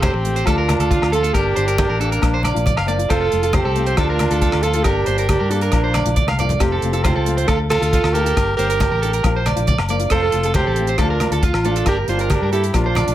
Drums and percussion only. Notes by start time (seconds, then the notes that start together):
0.02 kick, cross-stick, closed hi-hat, high conga, low agogo
0.25 closed hi-hat, muted conga
0.36 closed hi-hat
0.46 kick, cross-stick, closed hi-hat, low agogo
0.68 cross-stick, closed hi-hat, muted conga, high conga, low agogo
0.80 closed hi-hat
0.91 kick, closed hi-hat, high conga
1.02 cross-stick, low agogo
1.13 closed hi-hat
1.24 closed hi-hat
1.34 kick, cross-stick, closed hi-hat, muted conga, low agogo
1.56 closed hi-hat
1.68 closed hi-hat
1.78 kick, cross-stick, closed hi-hat, high conga, low agogo
2.01 closed hi-hat, muted conga
2.12 closed hi-hat
2.22 kick, cross-stick, closed hi-hat, muted conga, low agogo
2.43 cross-stick, closed hi-hat, muted conga, high conga, low agogo
2.56 closed hi-hat
2.66 kick, closed hi-hat, high conga
2.77 cross-stick, low agogo
2.88 closed hi-hat
2.99 closed hi-hat
3.10 kick, cross-stick, closed hi-hat, low agogo
3.32 closed hi-hat
3.43 closed hi-hat
3.53 kick, cross-stick, closed hi-hat, high conga, low agogo
3.76 closed hi-hat, muted conga
3.86 closed hi-hat
3.97 kick, cross-stick, closed hi-hat, muted conga, low agogo
4.19 cross-stick, closed hi-hat, muted conga, high conga, low agogo
4.31 closed hi-hat
4.42 kick, closed hi-hat, high conga
4.52 cross-stick, low agogo
4.63 closed hi-hat
4.73 closed hi-hat
4.84 kick, cross-stick, closed hi-hat, low agogo
5.06 closed hi-hat
5.18 closed hi-hat
5.29 kick, cross-stick, closed hi-hat, high conga, low agogo
5.51 closed hi-hat, muted conga
5.61 closed hi-hat
5.72 kick, cross-stick, closed hi-hat, muted conga, low agogo
5.94 cross-stick, closed hi-hat, muted conga, high conga, low agogo
6.06 closed hi-hat, high conga
6.16 kick, closed hi-hat, high conga
6.28 cross-stick, high conga, low agogo
6.39 closed hi-hat, low conga
6.49 closed hi-hat, low conga
6.60 kick, cross-stick, closed hi-hat, low agogo
6.82 closed hi-hat
6.93 closed hi-hat
7.04 kick, cross-stick, closed hi-hat, high conga, low agogo
7.26 closed hi-hat
7.38 closed hi-hat
7.48 kick, cross-stick, closed hi-hat, muted conga, low agogo
7.70 cross-stick, closed hi-hat, muted conga, high conga, low agogo
7.82 closed hi-hat
7.93 kick, closed hi-hat, high conga
8.04 cross-stick, low agogo
8.15 closed hi-hat
8.26 closed hi-hat
8.37 kick, cross-stick, closed hi-hat, muted conga, low agogo
8.59 closed hi-hat
8.70 closed hi-hat
8.80 kick, cross-stick, closed hi-hat, high conga, low agogo
9.03 closed hi-hat
9.13 closed hi-hat
9.24 kick, cross-stick, closed hi-hat, muted conga, low agogo
9.46 cross-stick, closed hi-hat, muted conga, high conga, low agogo
9.57 closed hi-hat
9.67 kick, closed hi-hat, high conga
9.78 cross-stick, low agogo
9.89 closed hi-hat
10.00 closed hi-hat
10.10 kick, cross-stick, closed hi-hat, low agogo
10.32 closed hi-hat
10.43 closed hi-hat
10.54 kick, cross-stick, closed hi-hat, high conga, low agogo
10.76 closed hi-hat, muted conga
10.87 closed hi-hat
10.98 kick, cross-stick, closed hi-hat, low agogo
11.20 cross-stick, closed hi-hat, muted conga, high conga, low agogo
11.32 closed hi-hat
11.43 kick, closed hi-hat, high conga
11.54 cross-stick, low agogo
11.65 closed hi-hat
11.76 closed hi-hat
11.86 kick, cross-stick, closed hi-hat, muted conga, low agogo
12.08 closed hi-hat
12.19 closed hi-hat
12.30 kick, cross-stick, closed hi-hat, high conga, low agogo
12.52 closed hi-hat, muted conga
12.64 closed hi-hat
12.73 kick, cross-stick, closed hi-hat, muted conga, low agogo
12.95 cross-stick, closed hi-hat, muted conga, high conga, low conga, low agogo
13.08 closed hi-hat